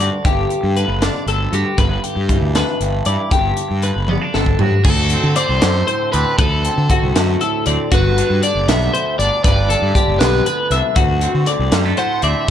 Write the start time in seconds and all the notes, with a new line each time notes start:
Already playing: D2 D3 D4
0.00 F#4 D5, closed hi-hat
0.25 G1 G2 G4, kick, closed hi-hat
0.50 closed hi-hat
0.63 G2
0.76 D3 B4, closed hi-hat
0.88 F#1
1.02 D4 D5, snare, closed hi-hat
1.26 G1 D2 A4, closed hi-hat
1.53 G2 F#4 G4, closed hi-hat
1.78 G1 G2 B4, kick, closed hi-hat
2.04 G4, closed hi-hat
2.16 G2
2.28 E3, kick, closed hi-hat
2.41 D2
2.55 D4 B4, snare, closed hi-hat
2.80 G1 G2, closed hi-hat
3.05 G2 E4 D5, closed hi-hat
3.31 G1 G2 G4, kick, closed hi-hat
3.57 closed hi-hat
3.71 G2
3.82 D3 B4, closed hi-hat
3.96 F#1
4.08 B3 D5, high tom
4.21 D4
4.34 G1 D2 A4, snare
4.46 kick
4.59 G2 F#4 G4, floor tom
4.84 D2 F#4 A4, kick, crash
5.10 C4, closed hi-hat
5.23 D3
5.36 D3 C5 D5, closed hi-hat
5.49 C2
5.62 F#2 A3, snare, closed hi-hat
5.87 A2 C5, closed hi-hat
6.12 D2 C4 B4 D5, closed hi-hat
6.38 D2 A4 B4, kick, closed hi-hat
6.65 C4 A4, closed hi-hat
6.78 D3
6.90 D3 F#4, kick, closed hi-hat
7.02 C2
7.15 F#2 A3, snare, closed hi-hat
7.41 A2 A4, closed hi-hat
7.66 D2 C4 D5, closed hi-hat
7.92 G1 G2 F#4 B4, kick, closed hi-hat
8.18 D4, closed hi-hat
8.30 G2
8.43 D3 D5, closed hi-hat
8.55 F#1
8.68 B1 B3 E5, snare, closed hi-hat
8.94 D2 C5, closed hi-hat
9.19 G1 D4 D5, closed hi-hat
9.44 G1 G2 B4 D5, kick, closed hi-hat
9.70 D4 A4, closed hi-hat
9.82 G2
9.95 D3 G4, kick, closed hi-hat
10.08 F#1
10.19 B1 B3 B4, snare, closed hi-hat
10.46 D2 B4, closed hi-hat
10.70 C2 D4 E5, closed hi-hat
10.96 D2 F#4, kick, closed hi-hat
11.21 C4, closed hi-hat
11.34 D3
11.46 D3 D5, closed hi-hat
11.59 C2
11.72 F#2 G3, snare, closed hi-hat
11.85 A3
11.96 A2 C5 F#5, closed hi-hat
12.22 D2 C4 D5 E5, closed hi-hat